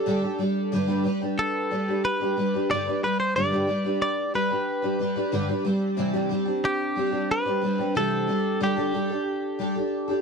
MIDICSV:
0, 0, Header, 1, 3, 480
1, 0, Start_track
1, 0, Key_signature, 1, "major"
1, 0, Tempo, 657895
1, 525, Time_signature, 4, 2, 24, 8
1, 7454, End_track
2, 0, Start_track
2, 0, Title_t, "Clean electric guitar"
2, 0, Program_c, 0, 27
2, 0, Note_on_c, 0, 69, 83
2, 259, Note_off_c, 0, 69, 0
2, 1014, Note_on_c, 0, 69, 90
2, 1492, Note_off_c, 0, 69, 0
2, 1494, Note_on_c, 0, 71, 95
2, 1973, Note_off_c, 0, 71, 0
2, 1976, Note_on_c, 0, 74, 109
2, 2215, Note_off_c, 0, 74, 0
2, 2218, Note_on_c, 0, 71, 95
2, 2330, Note_off_c, 0, 71, 0
2, 2333, Note_on_c, 0, 72, 86
2, 2449, Note_off_c, 0, 72, 0
2, 2452, Note_on_c, 0, 74, 101
2, 2924, Note_off_c, 0, 74, 0
2, 2933, Note_on_c, 0, 74, 97
2, 3152, Note_off_c, 0, 74, 0
2, 3176, Note_on_c, 0, 71, 85
2, 4100, Note_off_c, 0, 71, 0
2, 4852, Note_on_c, 0, 67, 95
2, 5333, Note_off_c, 0, 67, 0
2, 5336, Note_on_c, 0, 71, 114
2, 5812, Note_off_c, 0, 71, 0
2, 5815, Note_on_c, 0, 69, 109
2, 6297, Note_off_c, 0, 69, 0
2, 6300, Note_on_c, 0, 67, 76
2, 7454, Note_off_c, 0, 67, 0
2, 7454, End_track
3, 0, Start_track
3, 0, Title_t, "Twelve-string acoustic guitar"
3, 0, Program_c, 1, 25
3, 44, Note_on_c, 1, 50, 94
3, 50, Note_on_c, 1, 55, 84
3, 55, Note_on_c, 1, 62, 84
3, 57, Note_on_c, 1, 67, 100
3, 62, Note_on_c, 1, 69, 94
3, 152, Note_off_c, 1, 69, 0
3, 161, Note_on_c, 1, 69, 61
3, 164, Note_off_c, 1, 50, 0
3, 165, Note_off_c, 1, 67, 0
3, 167, Note_off_c, 1, 55, 0
3, 170, Note_off_c, 1, 62, 0
3, 174, Note_on_c, 1, 67, 51
3, 182, Note_on_c, 1, 62, 45
3, 280, Note_off_c, 1, 62, 0
3, 280, Note_on_c, 1, 55, 63
3, 283, Note_off_c, 1, 69, 0
3, 287, Note_off_c, 1, 67, 0
3, 289, Note_on_c, 1, 62, 73
3, 296, Note_on_c, 1, 67, 69
3, 302, Note_on_c, 1, 69, 74
3, 523, Note_off_c, 1, 55, 0
3, 523, Note_off_c, 1, 62, 0
3, 524, Note_on_c, 1, 43, 82
3, 524, Note_on_c, 1, 50, 81
3, 527, Note_off_c, 1, 67, 0
3, 531, Note_on_c, 1, 55, 87
3, 531, Note_on_c, 1, 62, 78
3, 534, Note_off_c, 1, 69, 0
3, 535, Note_on_c, 1, 67, 90
3, 538, Note_on_c, 1, 71, 90
3, 628, Note_off_c, 1, 71, 0
3, 634, Note_off_c, 1, 67, 0
3, 635, Note_off_c, 1, 62, 0
3, 636, Note_off_c, 1, 55, 0
3, 636, Note_on_c, 1, 71, 76
3, 642, Note_on_c, 1, 67, 73
3, 643, Note_off_c, 1, 43, 0
3, 643, Note_off_c, 1, 50, 0
3, 644, Note_on_c, 1, 62, 64
3, 645, Note_on_c, 1, 55, 68
3, 652, Note_on_c, 1, 43, 61
3, 652, Note_on_c, 1, 50, 66
3, 749, Note_off_c, 1, 55, 0
3, 755, Note_off_c, 1, 62, 0
3, 757, Note_on_c, 1, 55, 69
3, 761, Note_off_c, 1, 71, 0
3, 764, Note_off_c, 1, 67, 0
3, 764, Note_on_c, 1, 62, 68
3, 769, Note_off_c, 1, 43, 0
3, 769, Note_off_c, 1, 50, 0
3, 771, Note_on_c, 1, 67, 73
3, 777, Note_on_c, 1, 71, 81
3, 869, Note_off_c, 1, 71, 0
3, 878, Note_on_c, 1, 71, 55
3, 879, Note_off_c, 1, 67, 0
3, 882, Note_off_c, 1, 55, 0
3, 885, Note_off_c, 1, 62, 0
3, 887, Note_on_c, 1, 67, 54
3, 894, Note_on_c, 1, 62, 45
3, 900, Note_on_c, 1, 55, 44
3, 1233, Note_off_c, 1, 55, 0
3, 1242, Note_off_c, 1, 62, 0
3, 1242, Note_off_c, 1, 71, 0
3, 1242, Note_on_c, 1, 55, 62
3, 1246, Note_off_c, 1, 67, 0
3, 1250, Note_on_c, 1, 62, 70
3, 1257, Note_on_c, 1, 67, 72
3, 1261, Note_on_c, 1, 71, 72
3, 1364, Note_off_c, 1, 55, 0
3, 1364, Note_off_c, 1, 71, 0
3, 1368, Note_off_c, 1, 62, 0
3, 1369, Note_off_c, 1, 67, 0
3, 1372, Note_on_c, 1, 71, 52
3, 1378, Note_on_c, 1, 67, 48
3, 1387, Note_on_c, 1, 62, 44
3, 1389, Note_on_c, 1, 55, 43
3, 1596, Note_off_c, 1, 71, 0
3, 1605, Note_off_c, 1, 67, 0
3, 1605, Note_on_c, 1, 71, 52
3, 1611, Note_off_c, 1, 62, 0
3, 1614, Note_on_c, 1, 67, 57
3, 1617, Note_off_c, 1, 55, 0
3, 1620, Note_on_c, 1, 62, 48
3, 1625, Note_on_c, 1, 55, 49
3, 1718, Note_off_c, 1, 55, 0
3, 1725, Note_off_c, 1, 62, 0
3, 1725, Note_off_c, 1, 71, 0
3, 1727, Note_on_c, 1, 55, 58
3, 1730, Note_off_c, 1, 67, 0
3, 1733, Note_on_c, 1, 62, 67
3, 1742, Note_on_c, 1, 67, 65
3, 1746, Note_on_c, 1, 71, 66
3, 1844, Note_off_c, 1, 71, 0
3, 1846, Note_off_c, 1, 55, 0
3, 1849, Note_off_c, 1, 62, 0
3, 1851, Note_off_c, 1, 67, 0
3, 1853, Note_on_c, 1, 71, 54
3, 1859, Note_on_c, 1, 67, 48
3, 1866, Note_on_c, 1, 62, 48
3, 1874, Note_on_c, 1, 55, 51
3, 1969, Note_off_c, 1, 71, 0
3, 1972, Note_off_c, 1, 55, 0
3, 1972, Note_off_c, 1, 67, 0
3, 1975, Note_on_c, 1, 43, 72
3, 1976, Note_off_c, 1, 62, 0
3, 1981, Note_on_c, 1, 55, 77
3, 1982, Note_on_c, 1, 50, 84
3, 1987, Note_on_c, 1, 62, 87
3, 1989, Note_on_c, 1, 67, 86
3, 1992, Note_on_c, 1, 71, 80
3, 2082, Note_off_c, 1, 71, 0
3, 2090, Note_off_c, 1, 43, 0
3, 2091, Note_on_c, 1, 71, 47
3, 2092, Note_off_c, 1, 67, 0
3, 2093, Note_off_c, 1, 55, 0
3, 2094, Note_off_c, 1, 50, 0
3, 2096, Note_off_c, 1, 62, 0
3, 2100, Note_on_c, 1, 67, 40
3, 2107, Note_on_c, 1, 62, 43
3, 2114, Note_on_c, 1, 55, 39
3, 2205, Note_off_c, 1, 55, 0
3, 2208, Note_off_c, 1, 71, 0
3, 2212, Note_off_c, 1, 62, 0
3, 2213, Note_off_c, 1, 67, 0
3, 2214, Note_on_c, 1, 55, 59
3, 2221, Note_on_c, 1, 62, 57
3, 2226, Note_on_c, 1, 67, 62
3, 2233, Note_on_c, 1, 71, 69
3, 2446, Note_off_c, 1, 55, 0
3, 2449, Note_on_c, 1, 43, 74
3, 2453, Note_off_c, 1, 62, 0
3, 2453, Note_off_c, 1, 67, 0
3, 2453, Note_on_c, 1, 50, 72
3, 2455, Note_off_c, 1, 71, 0
3, 2455, Note_on_c, 1, 55, 70
3, 2461, Note_on_c, 1, 62, 82
3, 2462, Note_on_c, 1, 67, 80
3, 2464, Note_on_c, 1, 71, 78
3, 2560, Note_off_c, 1, 71, 0
3, 2566, Note_off_c, 1, 67, 0
3, 2567, Note_off_c, 1, 43, 0
3, 2568, Note_off_c, 1, 62, 0
3, 2568, Note_on_c, 1, 71, 72
3, 2569, Note_off_c, 1, 50, 0
3, 2570, Note_off_c, 1, 55, 0
3, 2575, Note_on_c, 1, 67, 58
3, 2577, Note_on_c, 1, 62, 71
3, 2582, Note_on_c, 1, 50, 56
3, 2582, Note_on_c, 1, 55, 62
3, 2584, Note_on_c, 1, 43, 55
3, 2671, Note_off_c, 1, 55, 0
3, 2679, Note_on_c, 1, 55, 66
3, 2680, Note_off_c, 1, 62, 0
3, 2684, Note_off_c, 1, 67, 0
3, 2687, Note_off_c, 1, 71, 0
3, 2689, Note_on_c, 1, 62, 70
3, 2693, Note_on_c, 1, 67, 69
3, 2694, Note_off_c, 1, 50, 0
3, 2695, Note_off_c, 1, 43, 0
3, 2701, Note_on_c, 1, 71, 65
3, 2796, Note_off_c, 1, 71, 0
3, 2802, Note_off_c, 1, 55, 0
3, 2805, Note_off_c, 1, 67, 0
3, 2805, Note_on_c, 1, 71, 53
3, 2807, Note_off_c, 1, 62, 0
3, 2814, Note_on_c, 1, 67, 50
3, 2818, Note_on_c, 1, 62, 48
3, 2827, Note_on_c, 1, 55, 48
3, 3156, Note_off_c, 1, 55, 0
3, 3163, Note_off_c, 1, 62, 0
3, 3165, Note_off_c, 1, 71, 0
3, 3165, Note_on_c, 1, 55, 67
3, 3169, Note_off_c, 1, 67, 0
3, 3172, Note_on_c, 1, 62, 69
3, 3180, Note_on_c, 1, 67, 70
3, 3182, Note_on_c, 1, 71, 75
3, 3276, Note_off_c, 1, 71, 0
3, 3285, Note_off_c, 1, 55, 0
3, 3285, Note_on_c, 1, 71, 51
3, 3287, Note_off_c, 1, 67, 0
3, 3288, Note_off_c, 1, 62, 0
3, 3296, Note_on_c, 1, 67, 51
3, 3300, Note_on_c, 1, 62, 43
3, 3306, Note_on_c, 1, 55, 47
3, 3509, Note_off_c, 1, 71, 0
3, 3518, Note_on_c, 1, 71, 55
3, 3519, Note_off_c, 1, 67, 0
3, 3521, Note_off_c, 1, 62, 0
3, 3527, Note_on_c, 1, 67, 55
3, 3528, Note_off_c, 1, 55, 0
3, 3530, Note_on_c, 1, 62, 51
3, 3537, Note_on_c, 1, 55, 49
3, 3632, Note_off_c, 1, 55, 0
3, 3641, Note_off_c, 1, 71, 0
3, 3641, Note_on_c, 1, 55, 57
3, 3642, Note_off_c, 1, 62, 0
3, 3646, Note_off_c, 1, 67, 0
3, 3650, Note_on_c, 1, 62, 66
3, 3659, Note_on_c, 1, 67, 66
3, 3665, Note_on_c, 1, 71, 70
3, 3755, Note_off_c, 1, 71, 0
3, 3762, Note_off_c, 1, 67, 0
3, 3763, Note_off_c, 1, 55, 0
3, 3764, Note_on_c, 1, 71, 65
3, 3767, Note_off_c, 1, 62, 0
3, 3771, Note_on_c, 1, 67, 61
3, 3776, Note_on_c, 1, 62, 57
3, 3783, Note_on_c, 1, 55, 53
3, 3880, Note_off_c, 1, 55, 0
3, 3880, Note_off_c, 1, 62, 0
3, 3880, Note_on_c, 1, 43, 82
3, 3884, Note_off_c, 1, 67, 0
3, 3884, Note_off_c, 1, 71, 0
3, 3884, Note_on_c, 1, 50, 84
3, 3889, Note_on_c, 1, 55, 88
3, 3889, Note_on_c, 1, 62, 91
3, 3893, Note_on_c, 1, 67, 89
3, 3897, Note_on_c, 1, 71, 93
3, 3994, Note_off_c, 1, 71, 0
3, 3999, Note_off_c, 1, 67, 0
3, 4002, Note_off_c, 1, 43, 0
3, 4003, Note_on_c, 1, 71, 60
3, 4004, Note_off_c, 1, 50, 0
3, 4006, Note_off_c, 1, 62, 0
3, 4007, Note_off_c, 1, 55, 0
3, 4008, Note_on_c, 1, 67, 51
3, 4017, Note_on_c, 1, 62, 47
3, 4024, Note_on_c, 1, 55, 44
3, 4110, Note_off_c, 1, 55, 0
3, 4119, Note_on_c, 1, 55, 77
3, 4121, Note_off_c, 1, 62, 0
3, 4123, Note_off_c, 1, 71, 0
3, 4124, Note_on_c, 1, 60, 70
3, 4126, Note_off_c, 1, 67, 0
3, 4131, Note_on_c, 1, 62, 72
3, 4138, Note_on_c, 1, 67, 83
3, 4353, Note_off_c, 1, 55, 0
3, 4354, Note_on_c, 1, 48, 87
3, 4358, Note_off_c, 1, 60, 0
3, 4358, Note_off_c, 1, 62, 0
3, 4358, Note_on_c, 1, 52, 85
3, 4359, Note_off_c, 1, 67, 0
3, 4362, Note_on_c, 1, 55, 85
3, 4366, Note_on_c, 1, 60, 88
3, 4367, Note_on_c, 1, 62, 91
3, 4368, Note_on_c, 1, 67, 92
3, 4466, Note_off_c, 1, 67, 0
3, 4470, Note_off_c, 1, 60, 0
3, 4470, Note_off_c, 1, 62, 0
3, 4474, Note_off_c, 1, 55, 0
3, 4475, Note_on_c, 1, 67, 75
3, 4478, Note_off_c, 1, 52, 0
3, 4479, Note_off_c, 1, 48, 0
3, 4479, Note_on_c, 1, 60, 68
3, 4479, Note_on_c, 1, 62, 68
3, 4483, Note_on_c, 1, 55, 75
3, 4486, Note_on_c, 1, 52, 73
3, 4487, Note_on_c, 1, 48, 63
3, 4582, Note_off_c, 1, 55, 0
3, 4590, Note_on_c, 1, 55, 75
3, 4591, Note_off_c, 1, 60, 0
3, 4597, Note_off_c, 1, 62, 0
3, 4599, Note_off_c, 1, 67, 0
3, 4600, Note_on_c, 1, 60, 74
3, 4605, Note_off_c, 1, 48, 0
3, 4605, Note_off_c, 1, 52, 0
3, 4606, Note_on_c, 1, 62, 83
3, 4612, Note_on_c, 1, 67, 84
3, 4702, Note_off_c, 1, 67, 0
3, 4710, Note_on_c, 1, 67, 52
3, 4713, Note_off_c, 1, 62, 0
3, 4717, Note_off_c, 1, 55, 0
3, 4719, Note_off_c, 1, 60, 0
3, 4721, Note_on_c, 1, 62, 50
3, 4728, Note_on_c, 1, 60, 45
3, 4735, Note_on_c, 1, 55, 43
3, 5065, Note_off_c, 1, 55, 0
3, 5073, Note_off_c, 1, 60, 0
3, 5074, Note_on_c, 1, 55, 64
3, 5077, Note_off_c, 1, 67, 0
3, 5082, Note_off_c, 1, 62, 0
3, 5082, Note_on_c, 1, 60, 69
3, 5091, Note_on_c, 1, 62, 75
3, 5098, Note_on_c, 1, 67, 76
3, 5182, Note_off_c, 1, 67, 0
3, 5188, Note_off_c, 1, 62, 0
3, 5191, Note_on_c, 1, 67, 50
3, 5195, Note_off_c, 1, 60, 0
3, 5197, Note_on_c, 1, 62, 56
3, 5198, Note_off_c, 1, 55, 0
3, 5204, Note_on_c, 1, 60, 45
3, 5214, Note_on_c, 1, 55, 45
3, 5429, Note_off_c, 1, 67, 0
3, 5435, Note_off_c, 1, 62, 0
3, 5437, Note_on_c, 1, 67, 59
3, 5443, Note_off_c, 1, 60, 0
3, 5444, Note_on_c, 1, 62, 52
3, 5448, Note_off_c, 1, 55, 0
3, 5451, Note_on_c, 1, 60, 51
3, 5458, Note_on_c, 1, 55, 44
3, 5546, Note_off_c, 1, 55, 0
3, 5554, Note_off_c, 1, 60, 0
3, 5555, Note_on_c, 1, 55, 61
3, 5560, Note_off_c, 1, 67, 0
3, 5563, Note_off_c, 1, 62, 0
3, 5563, Note_on_c, 1, 60, 65
3, 5573, Note_on_c, 1, 62, 68
3, 5580, Note_on_c, 1, 67, 71
3, 5669, Note_off_c, 1, 67, 0
3, 5675, Note_off_c, 1, 62, 0
3, 5678, Note_off_c, 1, 55, 0
3, 5678, Note_on_c, 1, 67, 58
3, 5683, Note_off_c, 1, 60, 0
3, 5684, Note_on_c, 1, 62, 54
3, 5692, Note_on_c, 1, 60, 50
3, 5696, Note_on_c, 1, 55, 46
3, 5799, Note_off_c, 1, 55, 0
3, 5800, Note_off_c, 1, 67, 0
3, 5800, Note_on_c, 1, 48, 81
3, 5802, Note_off_c, 1, 60, 0
3, 5803, Note_off_c, 1, 62, 0
3, 5803, Note_on_c, 1, 52, 70
3, 5808, Note_on_c, 1, 55, 76
3, 5811, Note_on_c, 1, 60, 87
3, 5812, Note_on_c, 1, 62, 81
3, 5814, Note_on_c, 1, 67, 83
3, 6026, Note_off_c, 1, 55, 0
3, 6035, Note_on_c, 1, 55, 66
3, 6037, Note_off_c, 1, 60, 0
3, 6041, Note_off_c, 1, 48, 0
3, 6042, Note_off_c, 1, 52, 0
3, 6042, Note_off_c, 1, 62, 0
3, 6046, Note_on_c, 1, 60, 70
3, 6048, Note_off_c, 1, 67, 0
3, 6051, Note_on_c, 1, 62, 67
3, 6058, Note_on_c, 1, 67, 65
3, 6269, Note_off_c, 1, 55, 0
3, 6275, Note_off_c, 1, 62, 0
3, 6277, Note_off_c, 1, 67, 0
3, 6278, Note_on_c, 1, 50, 72
3, 6278, Note_on_c, 1, 55, 87
3, 6281, Note_off_c, 1, 60, 0
3, 6284, Note_on_c, 1, 62, 77
3, 6286, Note_on_c, 1, 67, 80
3, 6290, Note_on_c, 1, 69, 84
3, 6387, Note_off_c, 1, 69, 0
3, 6389, Note_off_c, 1, 67, 0
3, 6395, Note_off_c, 1, 55, 0
3, 6396, Note_off_c, 1, 62, 0
3, 6396, Note_on_c, 1, 69, 63
3, 6398, Note_on_c, 1, 67, 67
3, 6400, Note_off_c, 1, 50, 0
3, 6404, Note_on_c, 1, 55, 61
3, 6405, Note_on_c, 1, 62, 65
3, 6409, Note_on_c, 1, 50, 57
3, 6502, Note_off_c, 1, 55, 0
3, 6511, Note_on_c, 1, 55, 63
3, 6513, Note_off_c, 1, 62, 0
3, 6519, Note_off_c, 1, 69, 0
3, 6520, Note_off_c, 1, 67, 0
3, 6522, Note_on_c, 1, 62, 67
3, 6525, Note_off_c, 1, 50, 0
3, 6528, Note_on_c, 1, 67, 68
3, 6536, Note_on_c, 1, 69, 74
3, 6626, Note_off_c, 1, 69, 0
3, 6634, Note_on_c, 1, 69, 53
3, 6637, Note_off_c, 1, 55, 0
3, 6638, Note_off_c, 1, 67, 0
3, 6642, Note_off_c, 1, 62, 0
3, 6647, Note_on_c, 1, 67, 50
3, 6656, Note_on_c, 1, 62, 48
3, 6992, Note_off_c, 1, 62, 0
3, 6995, Note_on_c, 1, 55, 73
3, 6996, Note_off_c, 1, 67, 0
3, 6998, Note_off_c, 1, 69, 0
3, 7001, Note_on_c, 1, 62, 68
3, 7005, Note_on_c, 1, 67, 74
3, 7013, Note_on_c, 1, 69, 81
3, 7108, Note_off_c, 1, 69, 0
3, 7117, Note_on_c, 1, 69, 58
3, 7118, Note_off_c, 1, 55, 0
3, 7121, Note_off_c, 1, 62, 0
3, 7121, Note_off_c, 1, 67, 0
3, 7130, Note_on_c, 1, 67, 49
3, 7142, Note_on_c, 1, 62, 49
3, 7343, Note_off_c, 1, 69, 0
3, 7352, Note_on_c, 1, 69, 60
3, 7354, Note_off_c, 1, 67, 0
3, 7363, Note_on_c, 1, 67, 60
3, 7365, Note_off_c, 1, 62, 0
3, 7373, Note_on_c, 1, 62, 54
3, 7454, Note_off_c, 1, 62, 0
3, 7454, Note_off_c, 1, 67, 0
3, 7454, Note_off_c, 1, 69, 0
3, 7454, End_track
0, 0, End_of_file